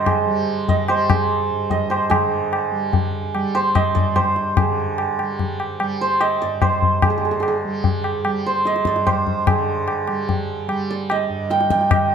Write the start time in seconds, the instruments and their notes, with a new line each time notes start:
Already playing: tanpura G2 D3 G3, santur C5 D#5
0.06 santur G#4, tabla na, tabla ge
0.26 tanpura G3
0.69 santur D#5, tabla tin, tabla ge
0.88 tanpura G3, santur C5, tabla na
1.10 santur G#4, tabla na, tabla ge
1.50 tanpura G2
1.70 santur D#5, tabla tin, tabla ge
1.90 santur C5, tabla na
2.10 tanpura D3, santur G#4, tabla na, tabla ge
2.53 tabla na
2.72 tanpura G3
2.93 tabla tin, tabla ge
3.35 tanpura G3, tabla na
3.55 santur C5, tabla na
3.75 santur D#5, tabla na, tabla ge
3.95 tanpura G2, santur D5, tabla ge
4.16 santur C5, tabla na, tabla ge
4.36 tabla te
4.57 tanpura D3, santur G#4, tabla na, tabla ge
4.98 tabla na
5.19 tanpura G3, tabla na
5.39 tabla tin, tabla ge
5.60 tabla na
5.80 tanpura G3, tabla na
6.01 santur C5
6.21 santur D#5, tabla na
6.42 tanpura G2, santur D5
6.62 santur C5, tabla na, tabla ge
6.82 tabla ge
7.02 tanpura D3, santur G#4, tabla na, tabla ge
7.10 santur G#4
7.18 santur G#4
7.25 santur G#4
7.31 santur G#4
7.40 santur G#4, tabla na
7.48 santur G#4
7.64 tanpura G3
7.84 tabla tin, tabla ge
8.04 tabla na
8.25 tanpura G3, tabla na
8.46 santur C5
8.65 santur D#5, tabla te
8.76 tabla te
8.85 tanpura G2, santur D5, tabla ke
8.96 tabla te
9.07 santur C5, tabla na, tabla ge
9.27 tabla ge
9.47 tanpura D3, santur G#4, tabla na, tabla ge
9.88 tabla na
10.08 tanpura G3, tabla na
10.29 tabla tin, tabla ge
10.68 tanpura G3, tabla na
10.91 santur D5
11.10 santur D#5, tabla na
11.29 tanpura G2
11.50 santur G5, tabla te
11.61 tabla te
11.70 santur G5, tabla ke
11.81 tabla te
11.91 tanpura D3, santur D#5, tabla na, tabla ge